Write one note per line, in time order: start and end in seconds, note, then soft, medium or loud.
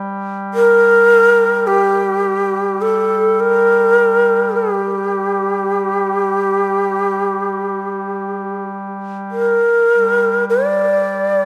0.00 9.73 G3 soft
0.54 1.69 A#4 loud
1.67 2.83 G4 medium
2.82 3.42 A4 medium
3.40 4.57 A#4 loud
4.56 8.68 G4 medium
9.31 10.45 A#4 medium
9.90 11.45 G3 soft
10.50 11.45 D5 medium